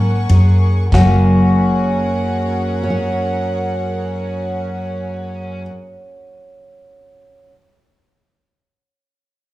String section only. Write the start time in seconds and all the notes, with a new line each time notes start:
Already playing: A#4 F#5 G#5 C#6
0.92 C#4 F#4 G#4 A#4 F#5